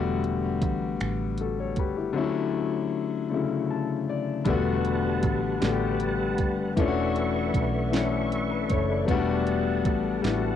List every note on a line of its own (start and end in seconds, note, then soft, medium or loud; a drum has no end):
0.00 0.62 E1 medium
0.00 0.91 D3 medium
0.00 0.95 G3 medium
0.00 0.93 A3 medium
0.00 0.93 B3 medium
0.00 0.94 F#4 loud
0.24 closed hi-hat soft
0.62 0.96 A1 medium
0.62 kick medium
0.62 closed hi-hat medium
1.01 1.78 A1 medium
1.01 finger snap loud
1.01 closed hi-hat medium
1.38 1.58 F#4 soft
1.38 1.58 A4 medium
1.38 closed hi-hat medium
1.60 1.77 A4 medium
1.60 1.77 C#5 medium
1.76 2.12 F#1 medium
1.76 1.96 G4 medium
1.76 1.96 B4 medium
1.76 kick medium
1.76 closed hi-hat medium
1.97 2.16 E4 soft
1.97 2.33 G4 medium
2.13 3.21 D3 loud
2.13 3.22 F#3 medium
2.13 3.23 A3 medium
2.17 3.23 C#4 medium
2.17 3.24 E4 loud
3.29 4.39 C#3 medium
3.29 4.37 D3 medium
3.29 4.38 F#3 medium
3.29 4.38 A3 medium
3.34 4.40 E4 medium
3.71 4.06 A5 medium
4.09 4.44 D5 medium
4.45 5.23 E1 loud
4.45 5.53 D3 loud
4.45 6.74 G3 medium
4.45 5.53 G3 medium
4.45 5.54 A3 medium
4.45 9.03 B4 medium
4.45 6.74 F#5 medium
4.45 6.74 A5 medium
4.45 kick loud
4.45 closed hi-hat medium
4.49 5.55 B3 medium
4.49 5.55 F#4 loud
4.85 closed hi-hat soft
5.23 5.58 A1 medium
5.23 kick medium
5.23 closed hi-hat medium
5.60 6.39 A1 medium
5.60 6.68 D3 medium
5.60 6.69 G3 medium
5.60 6.69 A3 medium
5.60 snare loud
5.60 closed hi-hat medium
5.65 6.70 B3 medium
5.65 5.70 F#4 medium
5.72 6.74 G4 medium
6.00 closed hi-hat medium
6.38 6.73 F#1 medium
6.38 kick medium
6.38 closed hi-hat medium
6.76 7.50 E1 medium
6.76 7.84 E3 loud
6.76 7.84 A3 medium
6.76 7.85 C#4 medium
6.76 7.86 D4 medium
6.76 10.56 A4 medium
6.76 9.05 E5 medium
6.76 9.05 C#6 medium
6.76 kick loud
6.76 closed hi-hat medium
6.81 6.86 F4 medium
6.88 7.90 F#4 loud
7.16 closed hi-hat soft
7.54 8.65 B1 medium
7.54 kick medium
7.54 closed hi-hat medium
7.91 8.99 E3 medium
7.91 8.99 A3 medium
7.91 9.00 C#4 medium
7.91 snare loud
7.91 closed hi-hat medium
7.95 9.01 D4 medium
7.95 9.01 E4 medium
8.32 closed hi-hat medium
8.51 8.69 B4 medium
8.69 9.05 F#1 medium
8.69 8.89 A4 medium
8.69 8.88 C#5 medium
8.69 kick medium
8.69 closed hi-hat medium
8.90 9.26 B4 medium
8.90 9.26 D5 medium
9.06 9.86 E1 loud
9.06 9.13 F#3 medium
9.06 10.15 A3 medium
9.06 10.15 B3 loud
9.06 10.56 F#5 medium
9.06 10.56 A5 medium
9.06 kick loud
9.06 closed hi-hat medium
9.10 10.17 G3 loud
9.10 10.16 D4 loud
9.10 10.16 F#4 loud
9.47 closed hi-hat soft
9.85 10.20 A1 medium
9.85 kick medium
9.85 closed hi-hat medium
10.22 10.56 A1 medium
10.22 10.56 G3 medium
10.22 10.56 A3 medium
10.22 10.56 B3 medium
10.22 10.56 D4 medium
10.22 snare loud
10.22 closed hi-hat medium
10.27 10.31 E4 medium
10.33 10.56 F#4 medium